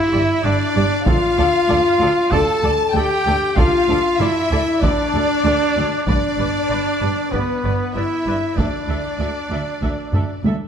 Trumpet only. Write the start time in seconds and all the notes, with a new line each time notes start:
Already playing: E4
0.44 D4
1.06 F4
2.31 A4
2.94 G4
3.57 F4
4.20 E4
4.81 D4
6.06 D4
7.31 B3
7.94 E4
8.57 D4